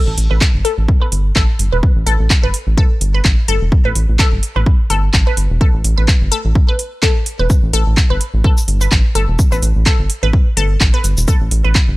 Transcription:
0.07 A1
0.18 A1, open hi-hat
0.31 A1 B4
0.41 kick, clap
0.54 G1
0.65 A4, open hi-hat
0.78 A1
0.88 kick
1.02 B4
1.12 G1, open hi-hat
1.36 A1 A4, kick, clap
1.59 G1, open hi-hat
1.72 E1 B4
1.83 kick
1.96 A1
2.06 A1 A4, open hi-hat
2.20 A1
2.30 kick, clap
2.43 G1 B4
2.54 open hi-hat
2.67 A1
2.77 A4, kick
3.01 G1, open hi-hat
3.14 B4
3.25 A1, kick, clap
3.48 G1 A4, open hi-hat
3.61 E1
3.72 kick
3.85 A1 B4
3.95 A1, open hi-hat
4.09 A1
4.19 A4, kick, clap
4.32 G1
4.43 open hi-hat
4.56 A1 B4
4.66 kick
4.90 G1 A4, open hi-hat
5.14 A1, kick, clap
5.27 B4
5.37 G1, open hi-hat
5.50 E1
5.61 A4, kick
5.74 A1
5.84 A1, open hi-hat
5.98 A1 B4
6.08 kick, clap
6.21 G1
6.32 A4, open hi-hat
6.45 A1
6.55 kick
6.68 B4
6.79 open hi-hat
7.03 A4, kick, clap
7.26 open hi-hat
7.39 E1 B4
7.50 kick, cabasa
7.63 A1
7.73 A1 A4, open hi-hat
7.87 A1
7.97 kick, clap
8.10 G1 B4
8.21 open hi-hat
8.34 A1
8.44 A4, kick
8.57 cabasa
8.68 G1, open hi-hat
8.81 B4, cabasa
8.92 A1, kick, clap
9.15 G1 A4, open hi-hat
9.28 E1
9.39 kick, cabasa
9.52 A1 B4, cabasa
9.62 A1, open hi-hat, cabasa
9.76 A1
9.86 A4, kick, clap
9.99 G1
10.10 open hi-hat
10.23 A1 B4
10.33 kick
10.57 G1 A4, open hi-hat
10.81 A1, kick, clap
10.94 B4
11.04 G1, open hi-hat, cabasa
11.17 E1, cabasa
11.28 A4, kick, cabasa
11.41 A1
11.51 A1, open hi-hat
11.64 A1 B4
11.75 kick, clap
11.88 G1

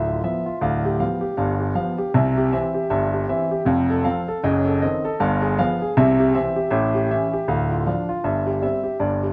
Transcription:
Already playing: D1 D2 E5
0.09 F4
0.24 F3 B3 E5
0.46 F4
0.61 D1 D2 F5
0.85 G4
1.00 F3 B3 F5
1.21 G4
1.37 G1 G2 F5
1.60 G4
1.75 F3 B3 F5
1.98 G4
2.14 C2 C3 E5
2.37 G4
2.52 E3 C4 E5
2.74 G4
2.90 G1 G2 E5
3.14 G4
3.29 E3 C4 E5
3.51 G4
3.66 F1 F2 F5
3.90 A4
4.04 F3 C4 F5
4.28 A4
4.44 F#1 F#2 D#5
4.66 A4
4.82 D#3 C4 D#5
5.04 A4
5.20 G1 G2 F5
5.42 G#4
5.59 F3 B3 F5
5.82 G#4
5.97 C2 C3 E5
6.20 G4
6.35 E3 C4 E5
6.56 G4
6.70 A1 A2 E5
6.94 G4
7.11 E3 C#4 E5
7.33 G4
7.48 D1 D2 F5
7.71 F4
7.87 F3 D4 F5
8.09 F4
8.24 G1 G2 E5
8.46 G4
8.62 G3 C4 E5
8.83 G4
9.00 G1 G2 D5
9.23 G4

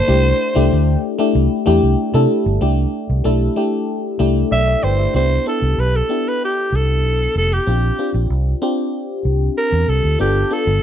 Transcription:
Already playing: A#3 D4 E4 A4 C5
0.07 C2 A3 D4 E4 G4
0.55 C2 A3 D4 E4 G4
0.73 D2
1.19 A3 D4 E4 G4
1.35 C2
1.66 E2 A3 D4 E4 G4
1.83 C2
2.14 C3 A3 D4 E4 A4
2.46 G1
2.61 C2 A3 D4 E4 G4
3.10 C2
3.24 B1 A3 D4 E4 A4
3.56 A3 D4 E4 G4
4.19 C2 A3 D4 E4 G4
4.51 B1 D5 E5
4.67 G4 E5
4.83 G1 B4 C5 G5
4.99 G4 E5
5.14 C2 B3 D4 E4 G4 C5
5.46 B3 D4 E4 A4
5.62 C2
5.78 B1 B4
5.96 A4
6.09 B3 D4 E4 G4
6.28 B4
6.45 G4
6.72 C2 A4
7.04 B1
7.35 F1 A4
7.53 G4
7.67 A#1 C4 D4 F4 G4
7.99 C4 D4 F4 G4
8.14 A#1
8.30 C2
8.62 C4 D4 F4 G4
9.25 C2
9.57 A#4
9.72 E2
9.88 C2 A4
10.04 D2
10.19 G1 B3 D4 F4 G4 A4
10.51 B3 D4 F4 A4
10.67 G1

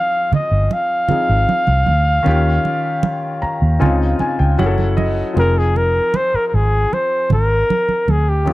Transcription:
Already playing: F3 C4 D#4 G#4 F5
0.32 D#5, muted fingered electric bass stroke, low conga
0.51 G1
0.71 F5, muted conga
1.08 F3 C4 D#4 G#4, muted fingered electric bass stroke, muted conga, low conga
1.29 G#1
1.49 high conga
1.67 C2, high conga
1.87 D2, high conga
2.23 D#2 D#3 C#4 F4, muted conga
2.27 G4
2.65 muted conga
3.03 high conga
3.42 A#5, muted fingered electric bass stroke
3.62 D#2
3.79 C#2 C#3 C4 D#4 F4 G#5, muted conga, low conga
4.19 G#5, muted fingered electric bass stroke, muted conga
4.39 C#2 G5
4.58 F#1 F#3 C#4 E4 G#4 F#5, high conga
4.66 A4
4.78 high conga
4.97 D#5, high conga
5.33 F1 F3 C4 D#4 G#4, muted conga
5.39 A#4
5.58 G#4
5.76 A#4, muted conga
6.14 C5, high conga
6.34 A#4, muted fingered electric bass stroke
6.47 A#4
6.54 G#1 G#4
6.93 C5, muted conga
7.30 G#1 A#4, muted conga, low conga
7.70 high conga
7.89 high conga
8.08 D2 G#4, high conga
8.29 G4
8.45 D#2 D#3 C#4 F4 G4, muted conga

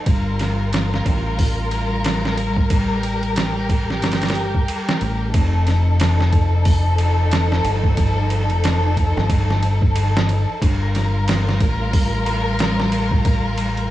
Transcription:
0.06 G1 G3 F4 A#4, kick, ride
0.39 snare, ride
0.73 snare, ride
0.94 snare
1.06 A1, kick, ride
1.39 kick, open hi-hat
1.71 ride
2.04 snare, ride
2.25 snare
2.38 ride
2.57 kick
2.70 G4, kick, ride
3.03 ride
3.23 ride
3.36 snare, ride
3.69 kick, ride
3.90 snare
4.02 G1, snare, ride
4.12 snare, ride
4.22 snare, ride
4.28 snare, ride
4.35 ride
4.55 kick
4.68 ride
4.89 snare
5.01 A1, ride
5.34 F1 F3 D#4 A4, kick, ride
5.67 snare, ride
6.00 snare, ride
6.20 snare
6.33 kick, ride
6.65 kick, open hi-hat
6.98 ride
7.31 snare, ride
7.52 snare
7.64 G1, ride
7.84 kick
7.97 kick, ride
8.30 ride
8.50 F1, ride
8.64 snare, ride
8.97 kick, ride
9.17 G1, snare
9.29 kick, ride
9.50 snare
9.62 ride
9.82 kick
9.95 ride
10.17 snare
10.29 ride
10.61 G1 G3 F4 A#4, kick, ride
10.95 snare, ride
11.28 snare, ride
11.49 snare
11.60 A1, kick, ride
11.93 kick, open hi-hat
12.26 ride
12.59 snare, ride
12.80 snare
12.92 ride
13.11 kick
13.25 kick, ride
13.58 ride
13.77 ride

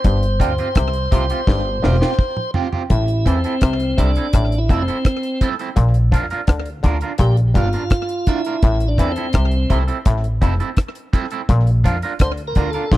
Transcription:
Already playing: C5
0.04 G1 G2, kick, closed hi-hat
0.23 closed hi-hat
0.40 D2 D3 C4 F4 G4, kick, closed hi-hat
0.58 C4 F4 G4, closed hi-hat
0.75 C2 C3, kick, cross-stick, closed hi-hat
0.93 closed hi-hat
1.11 C2 C3 C4 F4 G4, kick, closed hi-hat
1.30 C4 F4 G4, closed hi-hat
1.47 G1 G2, kick, snare
1.83 E1 E2 C4 F4 G4, snare
2.01 C4 F4 G4, snare
2.19 kick
2.37 mid tom
2.54 C4 F4 G4, floor tom
2.72 C4 F4 G4, floor tom
2.90 A1 A2 E4, kick, closed hi-hat
3.08 closed hi-hat
3.26 E2 E3 C4 E4 A4, kick, closed hi-hat
3.44 C4 E4 A4, closed hi-hat
3.61 C2 C3, kick, cross-stick, closed hi-hat
3.80 closed hi-hat
3.98 C2 C3 C4 D4 E4 A4, kick, closed hi-hat
4.15 C4 E4 A4, closed hi-hat
4.33 A1 A2, kick, cross-stick, closed hi-hat
4.52 closed hi-hat
4.58 E4
4.69 F1 F2 C4 E4 A4, kick, closed hi-hat
4.82 C4
4.88 C4 E4 A4, closed hi-hat
5.05 kick, cross-stick, closed hi-hat
5.23 closed hi-hat
5.41 C4 E4 A4, kick, closed hi-hat
5.59 C4 E4 A4, closed hi-hat
5.76 A#1 A#2, kick, closed hi-hat
5.94 closed hi-hat
6.12 F2 F3 D4 F4 A#4, kick, closed hi-hat
6.30 D4 F4 A#4, closed hi-hat
6.47 D2 D3, kick, cross-stick, closed hi-hat
6.66 closed hi-hat
6.83 D2 D3 D4 F4 A#4, kick, closed hi-hat
7.01 D4 F4 A#4, closed hi-hat
7.18 A#1 A#2 G4, kick, closed hi-hat
7.37 closed hi-hat
7.54 G1 G2 D4 F4 A#4, kick, closed hi-hat
7.73 D4 F4 A#4, closed hi-hat
7.90 kick, cross-stick, closed hi-hat
8.09 closed hi-hat
8.27 D4 E4 F4 A#4, kick, closed hi-hat
8.45 D4 F4 A#4, closed hi-hat
8.62 A1 A2, kick, closed hi-hat
8.80 closed hi-hat
8.88 D4
8.98 E2 E3 C4 E4 A4, kick, closed hi-hat
9.12 C4
9.16 C4 E4 A4, closed hi-hat
9.33 C2 C3, kick, cross-stick, closed hi-hat
9.51 closed hi-hat
9.70 C2 C3 C4 E4 A4, kick, closed hi-hat
9.88 C4 E4 A4, closed hi-hat
10.05 A1 A2, kick, closed hi-hat
10.24 closed hi-hat
10.41 F1 F2 C4 E4 A4, kick, closed hi-hat
10.60 C4 E4 A4, closed hi-hat
10.77 kick, cross-stick, closed hi-hat
10.95 closed hi-hat
11.13 C4 E4 A4, kick, closed hi-hat
11.31 C4 E4 A4, closed hi-hat
11.49 A#1 A#2, kick, closed hi-hat
11.67 closed hi-hat
11.84 F2 F3 D4 F4 A#4, kick, closed hi-hat
12.02 D4 F4 A#4, closed hi-hat
12.19 D2 D3 C5, kick, cross-stick, closed hi-hat
12.37 closed hi-hat
12.48 A#4
12.55 D2 D3 D4 F4 A#4, kick, closed hi-hat
12.71 A4 A#4, closed hi-hat
12.75 D4 F4
12.92 A#1 A#2 G4, kick, snare

